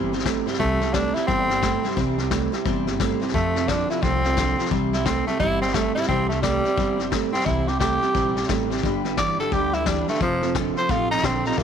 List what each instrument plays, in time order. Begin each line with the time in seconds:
Already playing: upright bass G1, clean electric guitar C3 G3, steel-string acoustic guitar C3 E3 G3 C4 E4 C5
0.12 clean electric guitar C3 G3, steel-string acoustic guitar G3 C4 E4 C5, snare
0.19 snare
0.24 clean electric guitar C3 A3, steel-string acoustic guitar G3 C4 E4 C5, kick, snare, hi-hat pedal
0.46 clean electric guitar C3 G3, steel-string acoustic guitar G3 C4 E4 C5, snare
0.53 snare
0.59 upright bass C2, steel-string acoustic guitar C3 E3 G3 C4 E4 C5, clean electric guitar C3 G3, tenor saxophone A3, kick, snare
0.81 clean electric guitar C3 G3, steel-string acoustic guitar G3 C4 E4 C5, snare
0.93 clean electric guitar C3 A3, steel-string acoustic guitar G3 C4 E4 C5, tenor saxophone D4, kick, snare, hi-hat pedal
1.14 clean electric guitar C3 G3, steel-string acoustic guitar G3 C4 E4 C5, tenor saxophone E4, snare
1.27 upright bass G1, steel-string acoustic guitar C3 E3 G3 C4 E4 C5, clean electric guitar C3 G3, tenor saxophone C4, kick, snare
1.49 clean electric guitar C3 G3, steel-string acoustic guitar G3 C4 E4, snare
1.62 clean electric guitar C3 A3, steel-string acoustic guitar G3 C4 E4 C5, kick, snare, hi-hat pedal
1.83 clean electric guitar C3 G3, steel-string acoustic guitar G3 C4 E4 C5, snare
1.90 snare
1.96 upright bass C2, steel-string acoustic guitar C3 E3 G3 C4 E4 C5, clean electric guitar C3 G3, kick, snare
2.18 clean electric guitar C3 G3, steel-string acoustic guitar G3 C4 E4 C5, snare
2.31 clean electric guitar C3 A3, steel-string acoustic guitar G3 C4 E4 C5, kick, snare, hi-hat pedal
2.52 clean electric guitar C3 G3, steel-string acoustic guitar G3 C4 E4 C5, snare
2.65 upright bass G1, clean electric guitar C3 G3, steel-string acoustic guitar C3 E3 G3 C4 E4 C5, kick, snare
2.86 clean electric guitar C3 G3, steel-string acoustic guitar G3 C4 E4 C5, snare
2.99 clean electric guitar C3 A3, steel-string acoustic guitar G3 C4 E4 C5, kick, snare, hi-hat pedal
3.21 clean electric guitar C3 G3, steel-string acoustic guitar G3 C4 E4 C5, snare
3.28 snare
3.33 clean electric guitar F2 C3, upright bass F2, steel-string acoustic guitar F3 A3 C4 F4 A4, tenor saxophone A3, kick, snare
3.55 clean electric guitar F2 C3, steel-string acoustic guitar C4 F4 A4, snare
3.68 clean electric guitar F2 D3, steel-string acoustic guitar A3 C4 F4 A4, tenor saxophone D4, kick, snare, hi-hat pedal
3.89 clean electric guitar F2 C3, steel-string acoustic guitar C4 F4 A4, tenor saxophone E4, snare
4.02 upright bass C2, clean electric guitar F2 C3, steel-string acoustic guitar F3 A3 C4 F4 A4, tenor saxophone C4, kick, snare
4.23 clean electric guitar F2 C3, steel-string acoustic guitar C4 F4 A4, snare
4.36 clean electric guitar F2 D3, steel-string acoustic guitar A3 C4 F4 A4, kick, snare, hi-hat pedal
4.58 clean electric guitar F2 C3, steel-string acoustic guitar C4 F4 A4, snare
4.65 snare
4.71 upright bass C2, steel-string acoustic guitar C3 E3 G3 C4 E4 C5, clean electric guitar C3 G3, kick, snare
4.93 clean electric guitar C3 G3, steel-string acoustic guitar G3 C4 E4 C5, tenor saxophone E4, snare
5.05 clean electric guitar C3 A3, steel-string acoustic guitar G3 C4 E4 C5, tenor saxophone C4, kick, snare, hi-hat pedal
5.27 clean electric guitar C3 G3, steel-string acoustic guitar G3 C4 E4 C5, tenor saxophone A3, snare
5.39 upright bass G1, steel-string acoustic guitar C3 E3 G3 C4 E4 C5, clean electric guitar C3 G3, tenor saxophone E4, kick, snare
5.61 clean electric guitar C3 G3, tenor saxophone C4, steel-string acoustic guitar C4 E4 C5, snare
5.68 snare
5.74 clean electric guitar C3 A3, steel-string acoustic guitar G3 C4 E4 C5, tenor saxophone A3, kick, snare, hi-hat pedal
5.95 clean electric guitar C3 G3, steel-string acoustic guitar G3 C4 E4 C5, tenor saxophone E4, snare
6.02 snare
6.08 upright bass C2, steel-string acoustic guitar C3 E3 G3 C4 E4 C5, clean electric guitar C3 G3, tenor saxophone C4, kick, snare
6.29 clean electric guitar C3 G3, steel-string acoustic guitar G3 C4 E4 C5, tenor saxophone A3, snare
6.42 clean electric guitar C3 A3, steel-string acoustic guitar G3 C4 E4 C5, tenor saxophone G3, kick, snare, hi-hat pedal
6.64 clean electric guitar C3 G3, steel-string acoustic guitar G3 C4 E4 C5, snare
6.76 upright bass G1, steel-string acoustic guitar C3 E3 G3 C4 E4 C5, clean electric guitar C3 G3, kick, snare
6.97 clean electric guitar C3 G3, steel-string acoustic guitar G3 C4 E4 C5, snare
7.10 clean electric guitar C3 A3, steel-string acoustic guitar G3 C4 E4 C5, kick, snare, hi-hat pedal
7.32 clean electric guitar C3 G3, steel-string acoustic guitar G3 C4 E4 C5, tenor saxophone C4, snare
7.40 snare
7.45 upright bass C2, clean electric guitar C3 G3, steel-string acoustic guitar C3 E3 G3 C4 E4 C5, tenor saxophone E4, kick, snare
7.67 clean electric guitar C3 G3, steel-string acoustic guitar G3 C4 E4 C5, tenor saxophone G4, snare
7.80 clean electric guitar C3 A3, steel-string acoustic guitar G3 C4 E4 C5, tenor saxophone G4, kick, snare, hi-hat pedal
8.01 clean electric guitar C3 G3, steel-string acoustic guitar G3 C4 E4 C5, snare
8.14 upright bass A#1, clean electric guitar C3 G3, steel-string acoustic guitar C3 E3 G3 C4 E4 C5, kick, snare
8.35 clean electric guitar C3 G3, steel-string acoustic guitar G3 C4 E4 C5, snare
8.43 snare
8.48 upright bass A1, clean electric guitar C3 A3, steel-string acoustic guitar G3 C4 E4 C5, kick, snare, hi-hat pedal
8.70 clean electric guitar C3 G3, steel-string acoustic guitar G3 C4 E4 C5, snare
8.77 snare
8.82 upright bass G1, clean electric guitar G2 D3, steel-string acoustic guitar G3 D4 G4 B4, kick, snare
9.04 clean electric guitar G2 D3, steel-string acoustic guitar D4 G4 B4, snare
9.17 clean electric guitar G2 E3, steel-string acoustic guitar G3 D4 G4 B4, tenor saxophone D5, kick, snare, hi-hat pedal
9.38 clean electric guitar G2 D3, steel-string acoustic guitar D4 G4 B4, tenor saxophone A4, snare
9.52 upright bass D2, clean electric guitar G2 D3, steel-string acoustic guitar G3 D4 G4 B4, tenor saxophone G4, kick, snare
9.73 clean electric guitar G2 D3, steel-string acoustic guitar D4 G4 B4, tenor saxophone E4, snare
9.86 clean electric guitar G2 E3, steel-string acoustic guitar G3 D4 G4 B4, tenor saxophone D4, kick, snare, hi-hat pedal
10.08 clean electric guitar G2 D3, tenor saxophone A3, steel-string acoustic guitar D4 G4 B4, snare
10.14 snare
10.20 upright bass F1, clean electric guitar F2 C3, steel-string acoustic guitar F3 A3 C4 F4 A4, tenor saxophone F3, kick, snare
10.42 clean electric guitar F2 C3, steel-string acoustic guitar C4 F4 A4, snare
10.55 clean electric guitar F2 D3, steel-string acoustic guitar A3 C4 F4 A4, kick, snare, hi-hat pedal
10.76 clean electric guitar F2 C3, steel-string acoustic guitar C4 F4 A4, tenor saxophone C5, snare
10.89 upright bass A1, clean electric guitar F2 C3, steel-string acoustic guitar F3 A3 C4 F4 A4, tenor saxophone F4, kick, snare
11.11 clean electric guitar F2 C3, steel-string acoustic guitar C4, tenor saxophone D#4, snare
11.18 snare
11.23 upright bass A#1, clean electric guitar F2 D3, steel-string acoustic guitar A3 C4 F4 A4, tenor saxophone C4, kick, snare, hi-hat pedal
11.45 clean electric guitar F2 C3, steel-string acoustic guitar C4 F4 A4, tenor saxophone D#4, snare
11.52 snare
11.58 upright bass C2, clean electric guitar C3 G3, steel-string acoustic guitar C3 E3 G3 C4, tenor saxophone A#3, kick, snare